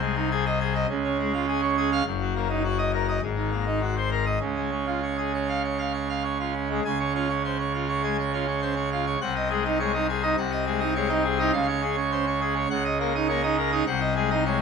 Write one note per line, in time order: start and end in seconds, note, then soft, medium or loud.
0.00 0.86 C2 loud
0.00 0.86 C3 loud
0.00 0.14 G#3 medium
0.16 0.29 D#4 medium
0.31 0.44 G#4 medium
0.46 0.59 D#5 loud
0.60 0.73 G#4 medium
0.75 0.87 D#5 loud
0.90 2.02 C#2 loud
0.90 2.02 C#3 loud
1.05 1.17 C#4 medium
1.19 1.32 G#3 medium
1.33 1.46 F4 medium
1.48 1.61 G#4 medium
1.63 1.75 C#5 loud
1.77 1.90 G#4 medium
1.92 2.04 F5 loud
2.06 3.19 F#1 loud
2.06 3.19 F#2 loud
2.21 2.34 F#3 medium
2.36 2.48 A#3 medium
2.50 2.63 D#4 medium
2.65 2.77 F#4 medium
2.78 2.91 D#5 loud
2.94 3.07 A#4 medium
3.08 3.20 D#5 medium
3.22 4.38 G#1 medium
3.22 4.38 G#2 medium
3.37 3.50 D#3 medium
3.52 3.65 A#3 medium
3.67 3.80 D#4 medium
3.82 3.95 F#4 medium
3.97 4.10 C5 medium
4.11 4.25 A#4 medium
4.26 4.39 D#5 loud
4.40 6.80 C#2 medium
4.40 6.80 C#3 medium
4.56 4.70 G#3 medium
4.72 4.85 C#4 medium
4.87 5.01 F4 medium
5.03 5.16 C#5 medium
5.18 5.32 G#4 medium
5.34 5.47 C#5 medium
5.49 5.62 F5 medium
5.64 5.78 C#5 medium
5.79 5.92 F5 medium
5.94 6.07 C#5 medium
6.09 6.23 F5 medium
6.24 6.38 C#5 medium
6.39 6.53 F4 medium
6.54 6.68 C#4 medium
6.70 6.83 G#3 medium
6.85 9.17 C#2 medium
6.85 9.17 C#3 medium
6.85 6.98 G#5 loud
7.00 7.13 C#5 medium
7.15 7.28 C#4 medium
7.15 7.28 F4 medium
7.29 7.42 C#5 medium
7.44 7.58 C#4 medium
7.44 7.57 C5 medium
7.59 7.72 C#5 medium
7.74 7.87 F4 medium
7.89 8.02 C#5 medium
8.03 8.16 G#3 medium
8.03 8.17 G#5 medium
8.19 8.32 C#5 medium
8.33 8.46 C#4 medium
8.33 8.46 F4 medium
8.48 8.61 C#5 medium
8.62 8.75 C#4 medium
8.62 8.74 C5 medium
8.76 8.89 C#5 medium
8.92 9.05 F4 medium
9.07 9.19 C#5 medium
9.21 10.35 C2 loud
9.21 10.36 C3 loud
9.21 9.34 F#5 loud
9.36 9.49 D#5 medium
9.50 9.63 G#3 medium
9.50 9.63 G#4 medium
9.65 9.78 D#4 medium
9.65 9.78 D#5 medium
9.80 9.93 G#3 medium
9.80 9.92 C#5 medium
9.94 10.07 D#4 medium
9.94 10.07 D#5 medium
10.09 10.22 G#4 medium
10.23 10.36 D#4 medium
10.23 10.36 D#5 medium
10.37 11.51 C2 medium
10.37 11.51 C3 medium
10.37 10.51 F#5 medium
10.52 10.65 D#5 medium
10.66 10.80 G#3 medium
10.66 10.80 G#4 medium
10.80 10.94 D#4 medium
10.80 10.94 D#5 medium
10.95 11.09 G#3 medium
10.95 11.08 C#5 medium
11.09 11.23 D#4 medium
11.09 11.23 D#5 medium
11.24 11.38 G#4 medium
11.39 11.52 D#4 medium
11.39 11.52 D#5 loud
11.53 12.66 C#2 loud
11.53 12.66 C#3 loud
11.53 11.67 F5 loud
11.68 11.81 C#5 medium
11.82 11.96 C#4 medium
11.82 11.96 G#4 medium
11.97 12.11 C#5 medium
12.12 12.25 C#4 medium
12.12 12.24 C5 medium
12.27 12.40 C#5 medium
12.41 12.54 G#4 medium
12.56 12.68 C#5 medium
12.70 13.83 C#2 loud
12.70 13.83 C#3 loud
12.70 12.83 F#5 loud
12.85 12.98 D#5 medium
13.00 13.13 A#3 medium
13.00 13.13 A#4 medium
13.15 13.28 D#4 medium
13.15 13.28 D#5 medium
13.29 13.42 A#3 medium
13.29 13.41 C#5 medium
13.43 13.56 D#4 medium
13.43 13.56 D#5 loud
13.58 13.71 A#4 medium
13.72 13.84 D#4 loud
13.72 13.84 D#5 loud
13.87 14.62 C2 loud
13.87 14.62 C3 loud
13.87 14.00 F#5 loud
14.01 14.14 D#5 medium
14.16 14.29 G#3 medium
14.16 14.29 G#4 medium
14.30 14.44 D#4 medium
14.30 14.43 D#5 medium
14.46 14.59 G#3 medium
14.46 14.58 C#5 medium